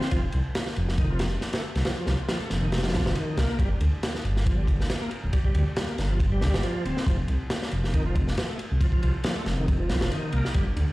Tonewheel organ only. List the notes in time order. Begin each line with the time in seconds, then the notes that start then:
Already playing: C4
0.11 F3
0.98 D#3
1.10 F3
1.54 A3
1.85 F3
1.97 F3
2.07 F3
2.29 F3
2.41 A3
2.62 D#3
2.84 F3
3.16 D#3
3.37 A#3
3.59 G3
4.46 F3
4.58 G3
5.01 A#3
5.33 G3
5.45 G3
5.55 G3
5.77 G3
5.88 A#3
6.10 F3
6.32 G3
6.64 F3
6.85 C4
7.07 F3
7.94 D#3
8.06 F3
8.49 A3
8.81 F3
8.93 F3
9.03 F3
9.24 F3
9.36 A3
9.58 D#3
9.80 F3
10.11 D#3
10.33 A#3
10.55 G3